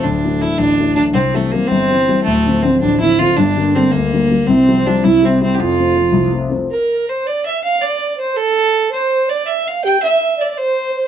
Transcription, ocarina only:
2.29 A3
2.65 C4
2.82 D4
3.03 E4
3.21 F4
3.38 D4
3.77 C4
3.94 C4
3.98 A#3
4.50 C4
4.88 D4
5.06 E4
5.28 C4
5.42 C4
5.61 F4
6.71 A#4
7.09 C5
7.27 D5
7.48 E5
7.64 F5
7.80 D5
8.02 D5
8.17 C5
8.35 A4
8.90 C5
9.28 D5
9.46 E5
9.67 F5
9.84 G4
10.00 E5
10.37 D5
10.55 C5 D5
10.96 C5

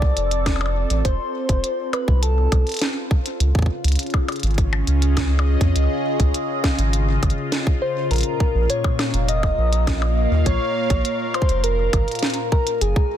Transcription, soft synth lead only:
Already playing: D5
1.05 C5
1.93 B4
2.23 A4
7.82 C5
8.11 A#4
8.70 C#5
9.29 D#5
10.46 C#5
11.35 C5
11.64 A#4
12.52 A#4
12.82 G#4

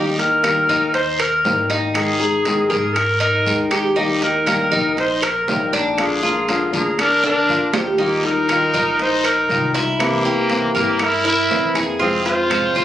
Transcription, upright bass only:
Already playing: D#2
0.70 D#2
1.45 G#1
2.71 G#2
3.45 D#2
4.73 A#1
5.48 A#1
6.74 D2
7.49 D#2
8.74 A#1
9.49 C2
10.75 G2
11.51 F2
12.76 F2

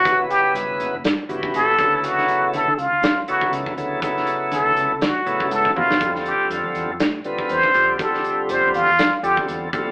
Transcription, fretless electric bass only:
0.54 G1
0.68 G1
0.80 F#1
0.94 F#1
1.04 G2
1.29 G1
1.54 F#1
1.78 D2
2.42 muted fretless electric bass stroke
2.53 D2
2.66 D3
2.77 C#2
2.91 D2
3.02 F#2
3.51 C#2
3.77 D2
4.52 D2
4.65 D2
4.76 C#2
4.90 C#2
5.01 D3
5.26 A2
5.51 G#2
5.76 F#2
6.01 F2
6.40 muted fretless electric bass stroke
6.50 F2
6.64 F3
6.75 E2
6.88 F2
7.00 A2
7.50 E2
7.75 F2
8.49 F2
8.63 F2
8.74 E2
8.89 E2
8.99 F3
9.23 F2
9.48 E2
9.73 A#1

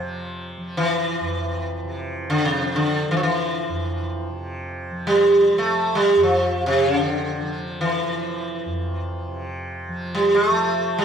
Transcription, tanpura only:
Already playing: F2 C3 F3
0.57 F3
1.20 F2
1.84 C3
2.44 F3
3.06 F3
3.69 F2
4.31 C3
4.91 F3
5.54 F3
6.16 F2
6.78 C3
7.40 F3
8.02 F3
8.65 F2
9.27 C3
9.88 F3
10.50 F3

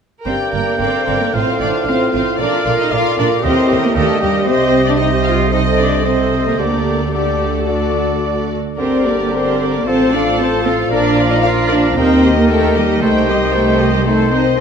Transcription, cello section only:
0.26 C4
0.54 A#3
0.68 A#3
0.81 C4
1.22 A#3
1.35 C4
1.61 D4
1.88 C4
2.14 C4
2.41 D4
2.80 D#4
2.92 F4
3.18 D4
3.44 C4
3.84 A#3
3.96 A3
4.22 G3
4.48 C4
4.88 D4
5.00 D#4
5.27 F4
5.53 D#4
5.80 D4
6.05 C4
6.47 A#3
6.59 A#3
7.14 A3
8.79 C4
9.06 A#3
9.21 A#3
9.33 C4
9.74 A#3
9.87 C4
10.13 D4
10.39 C4
10.65 C4
10.92 D4
11.32 D#4
11.45 F4
11.71 D4
11.98 C4
12.39 A#3
12.51 A3
12.76 G3
13.02 A3
13.28 G3
13.42 G3
13.54 A3
13.95 G3
14.06 A3
14.32 C4

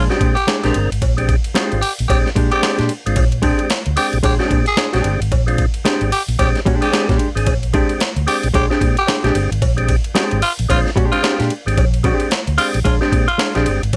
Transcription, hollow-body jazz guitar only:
0.10 G#3 D4 G4
0.47 G#3 D4 G#4
0.64 G#3 D4 G4
1.54 G#3 D4 G4
2.36 G#3 D4 G4
2.63 G#3 D4 G4
2.78 G#3 D4 G4
3.42 G#3 D4 G4
4.23 G#3 D4 G#4
4.39 G#3 D4 G4
4.77 G#3 D4 G#4
4.93 G#3 D4 G4
5.85 G#3 D4 G4
6.65 G#3 D4 G4
6.93 G#3 D4 G4
7.09 G#3 D4 G4
7.74 G#3 D4 G4
8.54 G#3 D4 G#4
8.70 G#3 D4 G4
9.09 G#3 D4 G#4
9.24 G#3 D4 G4
10.15 G#3 D4 G4
10.96 G#3 D4 G4
11.23 G#3 D4 G4
11.39 G#3 D4 G4
12.04 G#3 D4 G4
12.85 G#3 D4 G#4
13.01 G#3 D4 G4
13.38 G#3 D4 G#4
13.55 G#3 D4 G4

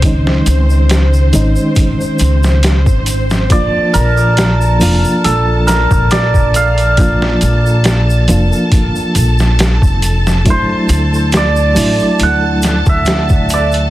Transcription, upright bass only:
Already playing: C#2
0.47 C#2
1.34 G#1
2.20 C#2
2.86 G#1
3.95 A#1
4.82 F1
5.25 A#1
5.91 A#1
7.42 A#1
8.29 F1
9.15 A#1
9.82 F1
10.89 D2
11.77 A1
12.21 D2
12.87 D2

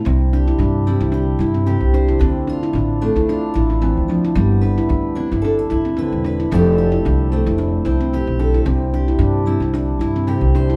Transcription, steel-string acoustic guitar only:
0.06 C3
0.34 G4
0.87 G3 E4
1.14 G4
1.40 E4
1.66 C3 G4
1.94 C5
2.19 D3
2.49 F4
3.01 A3 D4
3.29 F4
3.54 D4
3.82 E3
4.08 F3
4.36 G3
4.61 B4
5.15 D4 E4
5.42 A4
5.59 muted steel-string acoustic guitar stroke
5.71 E4
5.98 D3 B4
6.26 B4
6.52 F3 A3 C4 G4 A4
6.78 G4
7.32 A3 C4
7.58 muted steel-string acoustic guitar stroke
7.86 C4
8.14 G4
8.39 A4
8.65 C3
8.94 G4
9.46 G3 E4
9.75 muted steel-string acoustic guitar stroke
10.01 E4
10.27 C3 G4
10.55 C5

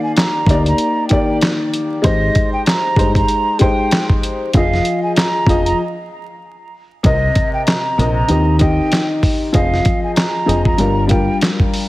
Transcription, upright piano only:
Already playing: D#3 A#3 G4 D5
0.48 A#3 D#4 G4 D5
1.10 D#3 A#3 G4 D5
2.02 G#3 D#4 G4 C5
2.96 G#3 D#4 G4 C5
3.59 G#3 D#4 G4 C5
4.55 F3 F4 G#4 D#5
5.47 F3 F4 G#4 D#5
7.03 C3 C4 A#4 D#5
7.98 C3 C4 A#4 D#5
8.28 D#3 C4 G4 D#5
8.59 D#3 C4 G4 D#5
9.52 F3 C4 G#4 D#5
10.46 F3 C4 G#4 D#5
10.78 G3 D4 F4 A#4
11.07 G3 D4 F4 A#4

